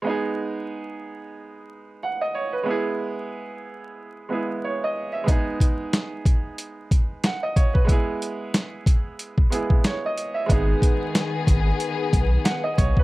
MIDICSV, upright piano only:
0, 0, Header, 1, 2, 480
1, 0, Start_track
1, 0, Key_signature, 5, "minor"
1, 0, Tempo, 652174
1, 44, Time_signature, 4, 2, 24, 8
1, 9594, End_track
2, 0, Start_track
2, 0, Title_t, "Upright piano"
2, 0, Program_c, 0, 0
2, 15, Note_on_c, 0, 56, 69
2, 33, Note_on_c, 0, 59, 64
2, 50, Note_on_c, 0, 63, 65
2, 69, Note_on_c, 0, 68, 82
2, 177, Control_c, 0, 64, 127
2, 1495, Note_on_c, 0, 78, 63
2, 1621, Note_off_c, 0, 78, 0
2, 1629, Note_on_c, 0, 75, 72
2, 1722, Note_off_c, 0, 75, 0
2, 1726, Note_on_c, 0, 73, 67
2, 1857, Note_off_c, 0, 73, 0
2, 1859, Note_on_c, 0, 71, 60
2, 1920, Note_off_c, 0, 56, 0
2, 1929, Note_off_c, 0, 59, 0
2, 1938, Note_off_c, 0, 63, 0
2, 1938, Note_on_c, 0, 56, 70
2, 1947, Note_off_c, 0, 68, 0
2, 1956, Note_on_c, 0, 59, 67
2, 1973, Note_on_c, 0, 64, 64
2, 1974, Control_c, 0, 64, 0
2, 1991, Note_on_c, 0, 68, 83
2, 2089, Note_off_c, 0, 71, 0
2, 2101, Control_c, 0, 64, 127
2, 3127, Note_off_c, 0, 56, 0
2, 3136, Note_off_c, 0, 59, 0
2, 3145, Note_off_c, 0, 64, 0
2, 3154, Note_off_c, 0, 68, 0
2, 3156, Note_on_c, 0, 56, 56
2, 3164, Note_on_c, 0, 59, 47
2, 3174, Note_on_c, 0, 64, 46
2, 3182, Note_on_c, 0, 68, 60
2, 3418, Note_on_c, 0, 73, 62
2, 3543, Note_off_c, 0, 73, 0
2, 3562, Note_on_c, 0, 75, 72
2, 3772, Note_on_c, 0, 76, 67
2, 3780, Note_off_c, 0, 75, 0
2, 3844, Note_off_c, 0, 56, 0
2, 3855, Note_on_c, 0, 56, 71
2, 3862, Note_off_c, 0, 59, 0
2, 3873, Note_on_c, 0, 59, 66
2, 3889, Note_off_c, 0, 64, 0
2, 3891, Note_on_c, 0, 63, 64
2, 3893, Note_off_c, 0, 68, 0
2, 3894, Control_c, 0, 64, 0
2, 3909, Note_on_c, 0, 68, 82
2, 4005, Note_off_c, 0, 76, 0
2, 4037, Control_c, 0, 64, 127
2, 5334, Note_on_c, 0, 78, 65
2, 5461, Note_off_c, 0, 78, 0
2, 5469, Note_on_c, 0, 75, 70
2, 5562, Note_off_c, 0, 75, 0
2, 5564, Note_on_c, 0, 73, 69
2, 5695, Note_off_c, 0, 73, 0
2, 5695, Note_on_c, 0, 71, 60
2, 5760, Note_off_c, 0, 56, 0
2, 5769, Note_off_c, 0, 59, 0
2, 5775, Note_on_c, 0, 56, 73
2, 5778, Note_off_c, 0, 63, 0
2, 5787, Note_off_c, 0, 68, 0
2, 5792, Note_on_c, 0, 59, 65
2, 5811, Note_on_c, 0, 64, 64
2, 5814, Control_c, 0, 64, 0
2, 5829, Note_on_c, 0, 68, 86
2, 5926, Note_off_c, 0, 71, 0
2, 5932, Control_c, 0, 64, 127
2, 6965, Note_off_c, 0, 56, 0
2, 6974, Note_off_c, 0, 59, 0
2, 6983, Note_off_c, 0, 64, 0
2, 6993, Note_off_c, 0, 68, 0
2, 6994, Note_on_c, 0, 56, 55
2, 7003, Note_on_c, 0, 59, 47
2, 7012, Note_on_c, 0, 64, 47
2, 7021, Note_on_c, 0, 68, 58
2, 7260, Note_on_c, 0, 73, 60
2, 7383, Note_off_c, 0, 73, 0
2, 7403, Note_on_c, 0, 75, 72
2, 7613, Note_on_c, 0, 76, 66
2, 7621, Note_off_c, 0, 75, 0
2, 7688, Note_off_c, 0, 56, 0
2, 7699, Note_on_c, 0, 56, 73
2, 7707, Note_off_c, 0, 59, 0
2, 7718, Note_on_c, 0, 59, 69
2, 7728, Note_off_c, 0, 64, 0
2, 7733, Note_off_c, 0, 68, 0
2, 7735, Control_c, 0, 64, 0
2, 7736, Note_on_c, 0, 63, 68
2, 7754, Note_on_c, 0, 68, 84
2, 7845, Note_off_c, 0, 76, 0
2, 7863, Control_c, 0, 64, 127
2, 9158, Note_on_c, 0, 78, 64
2, 9292, Note_off_c, 0, 78, 0
2, 9301, Note_on_c, 0, 75, 75
2, 9398, Note_off_c, 0, 75, 0
2, 9404, Note_on_c, 0, 73, 76
2, 9535, Note_off_c, 0, 73, 0
2, 9561, Note_on_c, 0, 71, 66
2, 9594, Note_off_c, 0, 56, 0
2, 9594, Note_off_c, 0, 59, 0
2, 9594, Note_off_c, 0, 63, 0
2, 9594, Note_off_c, 0, 68, 0
2, 9594, Note_off_c, 0, 71, 0
2, 9594, End_track
0, 0, End_of_file